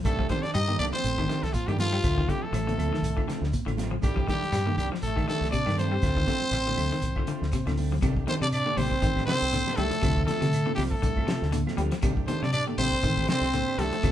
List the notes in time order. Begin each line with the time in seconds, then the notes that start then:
0.04 C2 D#3 A3 D4 G4 A4, kick, closed hi-hat, high conga, claves, shekere
0.19 F3 A3 D4 G4, kick
0.29 D#3 A3 C4 D4 G4 C5, kick, snare, closed hi-hat, high conga, shekere
0.43 D4 D5, snare, closed hi-hat
0.54 G2 G3 D#4 D#5, closed hi-hat, high conga, claves, shekere
0.68 D#3 A3 D4 G4, high conga
0.79 C2 D#3 A3 D4 G4 D5, closed hi-hat, high conga, low conga, claves, shekere
0.93 F3 C4 C5
1.04 A1, closed hi-hat, high conga, shekere
1.18 D#3 A3 D4 G4, kick, closed hi-hat, claves
1.28 D#3 A3 D4 G4, snare, closed hi-hat, shekere
1.43 C2 A3 A4, snare, closed hi-hat
1.53 F3 F4, kick, closed hi-hat, high conga, shekere
1.67 G2 D#3 A3 D4 G4, closed hi-hat, high conga, claves
1.72 G3
1.78 D#3 F3 A3 F4 G4, snare, closed hi-hat, high conga, low conga, shekere
1.93 G3
2.03 D2 A3 C4 F4, kick, closed hi-hat, high conga, claves, shekere
2.17 D#3 C4 F4, kick
2.28 D3 A3 C4 F4 G4, kick, closed hi-hat, high conga, shekere
2.32 G3
2.43 A3 A4, low conga
2.53 A1 F3, closed hi-hat, high conga, claves, shekere
2.66 D3 C4 F4, closed hi-hat, high conga
2.77 D2 A3 C4 F4, closed hi-hat, high conga, low conga, claves, shekere
2.93 D#3, snare
3.02 C2, closed hi-hat, high conga, shekere
3.16 D3 C4 F4, kick, claves
3.27 D3 A3 C4 F4, snare, closed hi-hat, shekere
3.41 D2, snare
3.53 kick, closed hi-hat, high conga, shekere
3.66 A1 D3 C4 F4, closed hi-hat, high conga, claves
3.77 A3 C4 F4, snare, closed hi-hat, high conga, low conga, shekere
3.91 F3
4.02 C2 D#3 G3 A3 D4 G4, kick, closed hi-hat, claves, shekere
4.16 F3 A3 D4 G4, kick
4.27 D#3 G3 A3 D4 G4, kick, snare, closed hi-hat, high conga, shekere
4.43 closed hi-hat, low conga
4.52 G2 G3, snare, closed hi-hat, claves, shekere
4.66 D#3 A3 D4 G4, high conga
4.77 C2 D#3 G3 D4 G4, muted clean electric guitar stroke, closed hi-hat, high conga, low conga, claves, shekere
4.92 F3, snare
5.02 A1 A3 A4, closed hi-hat, high conga, shekere
5.16 D#3 A3 D4 G4, kick, closed hi-hat, claves
5.27 D#3 A3 D4 G4 A4, snare, closed hi-hat, shekere
5.41 C2, snare, closed hi-hat
5.51 C3 D4 D5, kick, closed hi-hat, high conga, shekere
5.66 G2 D#3 A3 D4 G4, snare, closed hi-hat, claves
5.77 D#3 A3 C4 D4 G4 C5, closed hi-hat, high conga, low conga, shekere
5.92 G3
6.02 D2 A3 C4 F4, kick, snare, closed hi-hat, claves, shekere
6.16 D#3 C4 F4, kick
6.27 D3 A3 C4 F4, kick, snare, closed hi-hat, high conga, shekere
6.41 low conga
6.51 A1, muted clean electric guitar stroke, snare, closed hi-hat, high conga, claves, shekere
6.66 D3 C4 F4, closed hi-hat, high conga
6.77 D2 A3, muted clean electric guitar stroke, open hi-hat, high conga, low conga, claves, shekere
6.92 D#3
7.02 C2, closed hi-hat, high conga, shekere
7.16 D3 C4 F4, kick, claves
7.27 D3 A3 C4 F4, closed hi-hat, shekere
7.42 D2, snare
7.52 C3, kick, closed hi-hat, high conga, shekere
7.66 D2 D3 C4 F4, snare, closed hi-hat, high conga, claves
7.77 A3 C4, open hi-hat, low conga, shekere
7.92 F3, low conga
8.02 C2 C3 D#3 A3 D4 G4, kick, closed hi-hat, high conga, claves, shekere
8.16 A3 D4 G4, kick
8.27 D#3 A3 C4 D4 G4 C5, snare, closed hi-hat, high conga, shekere
8.41 C3 D4 D5, snare
8.52 D4 D5, closed hi-hat, high conga, claves, shekere
8.66 D3 A3 G4, high conga
8.77 A1 C3 D#3 C4 G4 C5, open hi-hat, high conga, low conga, claves, shekere
8.91 kick
9.02 A1 D#3, kick, closed hi-hat, high conga, shekere
9.16 A3 D4 G4, kick, snare, claves
9.26 C3 D#3 A3 C4 D4 G4 C5, snare, closed hi-hat, shekere
9.42 C2
9.52 D3, closed hi-hat, high conga, shekere
9.67 A3 D4 G4, snare, high conga, claves
9.76 C2 D#3 G3 A3 D4 G4 A4, closed hi-hat, high conga, low conga, shekere
9.91 F3, closed hi-hat
10.02 D2 C3 F3 C4 F4, muted clean electric guitar stroke, kick, closed hi-hat, high conga, claves, shekere
10.16 A3 C4 F4, kick
10.25 D3 F3 A3 C4 F4 A4, snare, closed hi-hat, high conga, shekere
10.41 C3 D3, snare, closed hi-hat, low conga
10.52 closed hi-hat, high conga, claves, shekere
10.66 D3 A3 C4 F4, high conga
10.75 C2 C3 F3 G3 C4 F4 G4, muted clean electric guitar stroke, open hi-hat, low conga, claves, shekere
10.91 A3 A4, kick
11.02 C2 D3, kick, closed hi-hat, high conga, shekere
11.17 A3 C4 F4, kick, claves
11.27 C3 F3 A3 C4 F4, snare, closed hi-hat, shekere
11.42 D2, snare
11.52 D3, closed hi-hat, high conga, shekere
11.67 A3 C4 F4, snare, high conga, claves
11.77 D2 F3 G3 A3 C4 F4, closed hi-hat, high conga, low conga, shekere
11.92 F3, snare, closed hi-hat
12.02 C2 C3 D#3 A3 D4 G4, kick, closed hi-hat, claves, shekere
12.15 A3 D4 G4, kick
12.27 D#3 A3 C4 D4 G4 C5, closed hi-hat, high conga, shekere
12.42 C3 D4 D5, snare, low conga
12.53 D4 D5, closed hi-hat, claves, shekere
12.67 D3 A3 D4 G4, high conga
12.78 A1 C3 D#3 A3 C4 D4 G4 C5, open hi-hat, low conga, claves
12.92 kick
13.03 A1 D#3, kick, closed hi-hat, shekere
13.17 A3 D4 G4, kick, claves
13.28 C3 D#3 A3 C4 D4 G4 C5, snare, closed hi-hat, shekere
13.41 C2, snare
13.53 D3, closed hi-hat, high conga, shekere
13.68 D4 G4, muted clean electric guitar stroke, claves
13.78 C2 D#3 G3 A3 D4 G4 A4, snare, closed hi-hat, high conga, low conga, shekere
13.92 F3, closed hi-hat
14.03 D2 C3 F3 A3 C4 F4, kick, closed hi-hat, claves, shekere